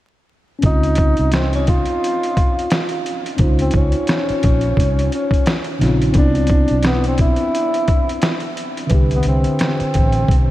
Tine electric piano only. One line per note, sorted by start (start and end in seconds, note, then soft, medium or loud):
0.59 3.34 C4 soft
0.59 3.33 C#4 medium
0.64 3.35 D#4 soft
0.64 3.37 F4 medium
3.36 5.75 C#4 medium
3.36 5.77 C5 medium
3.42 5.78 D#4 medium
3.42 5.79 F4 medium
5.79 6.14 C#3 medium
5.79 6.11 C4 soft
5.79 6.16 D#4 medium
5.83 6.16 F4 medium
6.12 8.87 B3 medium
6.12 8.85 C4 medium
6.17 8.88 D4 medium
6.17 8.89 E4 medium
8.87 10.51 D3 medium
8.87 10.51 B4 medium
8.92 10.51 D4 soft
8.92 10.51 G4 medium